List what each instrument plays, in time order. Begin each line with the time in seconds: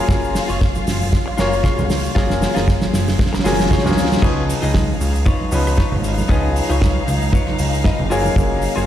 Already playing: clean electric guitar F4 G#4 A#4, string section F4 F5
0.09 analog synth bass F#1, grand piano F#3 A#3 C#4 F4 G#4, kick, snare, shaker
0.24 shaker
0.34 muted clean electric guitar stroke, snare, open hi-hat, shaker
0.48 analog synth bass F#1, clean electric guitar F4 G#4 C#5, shaker
0.61 kick, snare, shaker
0.74 muted clean electric guitar stroke, high conga, shaker
0.87 analog synth bass F#1, snare, open hi-hat, shaker
1.01 high conga, shaker
1.12 muted clean electric guitar stroke, kick, snare, shaker
1.26 muted clean electric guitar stroke
1.38 analog synth bass F#1, grand piano F#3 A#3 C#4 F4 C#5, clean electric guitar F4 G#4 A#4, snare, open hi-hat, shaker
1.53 shaker
1.63 clean electric guitar F4 G#4 C#5, kick, snare, shaker
1.78 analog synth bass C#2, high conga, low conga, shaker
1.90 snare, open hi-hat, shaker
2.05 shaker
2.15 analog synth bass F#1, grand piano F#3 A#3 C#4 F4 G#4, clean electric guitar F4 G#4 A#4, kick, snare, shaker
2.30 snare, shaker
2.41 muted clean electric guitar stroke, snare, open hi-hat, shaker
2.55 analog synth bass F#1, clean electric guitar F4 G#4 A#4, snare, shaker
2.68 kick, snare, shaker
2.81 muted clean electric guitar stroke, snare, high conga, shaker
2.93 analog synth bass F#1, snare, open hi-hat, shaker
3.08 snare, high conga, shaker
3.18 muted clean electric guitar stroke, kick, snare, swell, shaker
3.26 snare
3.33 analog synth bass F#1, muted clean electric guitar stroke, snare, shaker
3.39 snare
3.44 analog synth bass F#1, grand piano F#3 A#3 C#4 F4 G#4, clean electric guitar F4 G#4 A#4, snare, open hi-hat, shaker
3.53 snare
3.59 snare, shaker
3.66 snare
3.70 clean electric guitar F4 G#4 C#5, kick, snare, shaker
3.78 snare
3.84 analog synth bass C#2, grand piano F#3 A#3 C#4 F4 G#4, snare, high conga, low conga, shaker
3.92 snare
3.97 snare, open hi-hat, high conga, shaker
4.05 snare
4.12 snare, shaker
4.17 snare
4.22 analog synth bass C#2, grand piano F3 B3 C#4 D#4 G#4, clean electric guitar D#4 F4 B4 C#5, string section D#4 F5, kick, crash, shaker
4.50 open hi-hat, shaker
4.62 analog synth bass C#2, clean electric guitar D#4 F4 B4 D#5, shaker
4.74 kick, snare, high conga, shaker
5.01 analog synth bass C#2, open hi-hat, shaker
5.15 shaker
5.26 clean electric guitar D#4 F4 B4 C#5, kick, shaker
5.41 high conga
5.51 analog synth bass C#2, grand piano F3 B3 C#4 D#4 B4, open hi-hat, shaker
5.67 cross-stick, shaker
5.77 clean electric guitar D#4 F4 B4 C#5, kick, snare, shaker
5.92 analog synth bass G#1, low conga
6.03 muted clean electric guitar stroke, open hi-hat, shaker
6.18 high conga, shaker
6.29 analog synth bass C#2, grand piano F3 B3 C#4 D#4 G#4, clean electric guitar D#4 F4 B4 D#5, kick, shaker
6.56 open hi-hat, shaker
6.69 analog synth bass C#2, clean electric guitar D#4 F4 B4 C#5, shaker
6.81 kick, snare, high conga, shaker
7.08 analog synth bass C#2, open hi-hat, shaker
7.22 shaker
7.32 clean electric guitar D#4 F4 B4 C#5, kick, shaker
7.47 analog synth bass C#2, cross-stick, high conga
7.58 analog synth bass C#2, clean electric guitar F5, open hi-hat, shaker
7.74 shaker
7.84 clean electric guitar D#4 F4 B4 D#5, kick, snare, shaker
7.99 analog synth bass F#1, low conga
8.10 grand piano F#3 A#3 C#4 F4 G#4, clean electric guitar F4 F#4 G#4 A#4 C#5, open hi-hat, shaker
8.25 high conga, shaker
8.36 analog synth bass F#1, grand piano F#3 A#3 C#4 G#4 F5, kick, shaker
8.62 open hi-hat, shaker
8.76 analog synth bass F#1, clean electric guitar F4 F#4 G#4 C#5, shaker